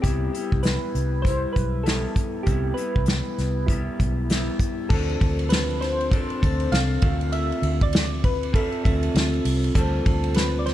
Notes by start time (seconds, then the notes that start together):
0.02 C2 C3 G3 B3 E4 G4, kick, closed hi-hat
0.33 G3 B3 E4, closed hi-hat
0.52 C2, kick
0.63 B4, snare, closed hi-hat
0.95 C2, closed hi-hat
1.22 G3 C5, kick
1.26 E4, closed hi-hat
1.53 B1 B4, kick, closed hi-hat
1.83 G3 A4, closed hi-hat
1.88 B3 E4, snare
2.16 kick, closed hi-hat
2.43 C2 C3 G3 B3 G4, kick, closed hi-hat
2.48 E4
2.74 E4 B4, closed hi-hat
2.78 G3 B3
2.96 C2, kick
3.06 snare, closed hi-hat
3.38 C2, snare, closed hi-hat
3.66 G3 B3 E4, kick, closed hi-hat
3.70 E4
4.00 B1, kick, closed hi-hat
4.30 G3 B3 E4, snare, closed hi-hat
4.59 kick, closed hi-hat
4.89 D2 D3 F3 C4 D4 A4, kick, crash
5.09 ride
5.21 D2, kick, ride
5.39 ride
5.49 B4, snare, ride
5.70 ride
5.81 C5, snare, ride
6.01 ride
6.11 F3 C4 D4 A4, kick, ride
6.30 ride
6.42 D2 C4 D4 A4, kick, ride
6.60 ride
6.72 C2 F5, snare, ride
7.02 D2 D3 A3 C4 F4 A4, kick, ride
7.21 ride
7.32 E5, ride
7.52 ride
7.62 D2, ride
7.81 D5, kick, ride
7.93 snare, ride
8.24 B4, kick, ride
8.43 ride
8.53 C4 F4 A4 E5, kick, ride
8.72 ride
8.84 D2 C4 F4 A4 E5, kick, ride
9.03 ride
9.14 D2, snare, ride
9.34 ride
9.45 C2, open hi-hat, ride
9.64 ride
9.75 D2 D3 G3 C4 F4 A4 C5, kick, hi-hat pedal, ride
10.06 D2, kick, ride
10.24 ride
10.34 B4, snare, ride
10.59 D5
10.66 C5, snare, ride